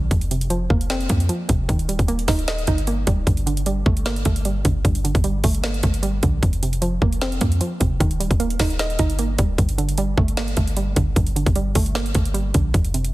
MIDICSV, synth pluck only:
0, 0, Header, 1, 2, 480
1, 0, Start_track
1, 0, Key_signature, -2, "minor"
1, 0, Tempo, 394737
1, 134, Time_signature, 4, 2, 24, 8
1, 15977, End_track
2, 0, Start_track
2, 0, Title_t, "Synth pluck"
2, 0, Program_c, 0, 84
2, 0, Note_on_c, 0, 50, 78
2, 0, Note_on_c, 0, 55, 93
2, 0, Note_on_c, 0, 57, 79
2, 0, Note_on_c, 0, 58, 94
2, 131, Note_off_c, 0, 55, 0
2, 132, Note_off_c, 0, 58, 0
2, 133, Note_off_c, 0, 50, 0
2, 133, Note_on_c, 0, 41, 96
2, 135, Note_off_c, 0, 57, 0
2, 377, Note_on_c, 0, 48, 78
2, 610, Note_on_c, 0, 53, 90
2, 853, Note_on_c, 0, 58, 84
2, 1095, Note_on_c, 0, 60, 112
2, 1319, Note_off_c, 0, 58, 0
2, 1333, Note_off_c, 0, 41, 0
2, 1334, Note_on_c, 0, 58, 77
2, 1556, Note_off_c, 0, 53, 0
2, 1570, Note_on_c, 0, 53, 85
2, 1575, Note_off_c, 0, 48, 0
2, 1808, Note_on_c, 0, 48, 83
2, 2049, Note_on_c, 0, 51, 99
2, 2051, Note_off_c, 0, 48, 0
2, 2052, Note_off_c, 0, 53, 0
2, 2054, Note_off_c, 0, 58, 0
2, 2055, Note_off_c, 0, 60, 0
2, 2294, Note_on_c, 0, 55, 79
2, 2532, Note_on_c, 0, 58, 89
2, 2772, Note_on_c, 0, 63, 92
2, 3015, Note_on_c, 0, 75, 100
2, 3239, Note_off_c, 0, 63, 0
2, 3251, Note_off_c, 0, 51, 0
2, 3253, Note_on_c, 0, 63, 92
2, 3481, Note_off_c, 0, 58, 0
2, 3494, Note_off_c, 0, 55, 0
2, 3496, Note_on_c, 0, 58, 85
2, 3732, Note_on_c, 0, 55, 82
2, 3973, Note_off_c, 0, 55, 0
2, 3973, Note_on_c, 0, 43, 96
2, 3974, Note_off_c, 0, 63, 0
2, 3974, Note_off_c, 0, 75, 0
2, 3975, Note_off_c, 0, 58, 0
2, 4214, Note_on_c, 0, 50, 90
2, 4455, Note_on_c, 0, 55, 91
2, 4694, Note_on_c, 0, 57, 86
2, 4932, Note_on_c, 0, 58, 107
2, 5158, Note_off_c, 0, 57, 0
2, 5172, Note_on_c, 0, 57, 83
2, 5173, Note_off_c, 0, 43, 0
2, 5401, Note_off_c, 0, 55, 0
2, 5414, Note_off_c, 0, 50, 0
2, 5415, Note_on_c, 0, 55, 81
2, 5651, Note_on_c, 0, 50, 75
2, 5897, Note_on_c, 0, 43, 97
2, 6120, Note_off_c, 0, 50, 0
2, 6133, Note_off_c, 0, 58, 0
2, 6134, Note_on_c, 0, 50, 80
2, 6360, Note_off_c, 0, 55, 0
2, 6373, Note_off_c, 0, 57, 0
2, 6374, Note_on_c, 0, 55, 85
2, 6613, Note_on_c, 0, 57, 89
2, 6851, Note_on_c, 0, 58, 96
2, 7083, Note_off_c, 0, 57, 0
2, 7095, Note_off_c, 0, 43, 0
2, 7097, Note_on_c, 0, 57, 78
2, 7314, Note_off_c, 0, 55, 0
2, 7328, Note_on_c, 0, 55, 91
2, 7334, Note_off_c, 0, 50, 0
2, 7573, Note_on_c, 0, 50, 79
2, 7811, Note_off_c, 0, 55, 0
2, 7813, Note_off_c, 0, 58, 0
2, 7814, Note_off_c, 0, 50, 0
2, 7814, Note_on_c, 0, 41, 95
2, 7815, Note_off_c, 0, 57, 0
2, 8058, Note_on_c, 0, 48, 76
2, 8290, Note_on_c, 0, 53, 90
2, 8534, Note_on_c, 0, 58, 83
2, 8776, Note_on_c, 0, 60, 106
2, 9000, Note_off_c, 0, 58, 0
2, 9014, Note_off_c, 0, 41, 0
2, 9014, Note_on_c, 0, 58, 79
2, 9236, Note_off_c, 0, 53, 0
2, 9250, Note_on_c, 0, 53, 81
2, 9256, Note_off_c, 0, 48, 0
2, 9488, Note_on_c, 0, 48, 85
2, 9728, Note_on_c, 0, 51, 100
2, 9731, Note_off_c, 0, 48, 0
2, 9732, Note_off_c, 0, 53, 0
2, 9734, Note_off_c, 0, 58, 0
2, 9735, Note_off_c, 0, 60, 0
2, 9974, Note_on_c, 0, 55, 79
2, 10212, Note_on_c, 0, 58, 90
2, 10452, Note_on_c, 0, 63, 92
2, 10695, Note_on_c, 0, 75, 103
2, 10918, Note_off_c, 0, 63, 0
2, 10931, Note_off_c, 0, 51, 0
2, 10933, Note_on_c, 0, 63, 91
2, 11161, Note_off_c, 0, 58, 0
2, 11174, Note_off_c, 0, 55, 0
2, 11175, Note_on_c, 0, 58, 82
2, 11412, Note_on_c, 0, 55, 80
2, 11653, Note_off_c, 0, 55, 0
2, 11653, Note_off_c, 0, 63, 0
2, 11653, Note_on_c, 0, 43, 100
2, 11654, Note_off_c, 0, 58, 0
2, 11654, Note_off_c, 0, 75, 0
2, 11894, Note_on_c, 0, 50, 91
2, 12135, Note_on_c, 0, 55, 92
2, 12373, Note_on_c, 0, 57, 88
2, 12613, Note_on_c, 0, 58, 107
2, 12837, Note_off_c, 0, 57, 0
2, 12852, Note_on_c, 0, 57, 82
2, 12853, Note_off_c, 0, 43, 0
2, 13080, Note_off_c, 0, 55, 0
2, 13094, Note_off_c, 0, 50, 0
2, 13094, Note_on_c, 0, 55, 84
2, 13330, Note_on_c, 0, 50, 78
2, 13576, Note_on_c, 0, 43, 94
2, 13799, Note_off_c, 0, 50, 0
2, 13813, Note_off_c, 0, 58, 0
2, 13813, Note_on_c, 0, 50, 80
2, 14039, Note_off_c, 0, 55, 0
2, 14053, Note_off_c, 0, 57, 0
2, 14054, Note_on_c, 0, 55, 88
2, 14293, Note_on_c, 0, 57, 89
2, 14531, Note_on_c, 0, 58, 101
2, 14762, Note_off_c, 0, 57, 0
2, 14775, Note_off_c, 0, 43, 0
2, 14777, Note_on_c, 0, 57, 76
2, 14993, Note_off_c, 0, 55, 0
2, 15008, Note_on_c, 0, 55, 88
2, 15014, Note_off_c, 0, 50, 0
2, 15253, Note_on_c, 0, 50, 79
2, 15491, Note_off_c, 0, 55, 0
2, 15492, Note_off_c, 0, 58, 0
2, 15493, Note_off_c, 0, 50, 0
2, 15493, Note_on_c, 0, 41, 99
2, 15495, Note_off_c, 0, 57, 0
2, 15737, Note_on_c, 0, 48, 78
2, 15977, Note_off_c, 0, 41, 0
2, 15977, Note_off_c, 0, 48, 0
2, 15977, End_track
0, 0, End_of_file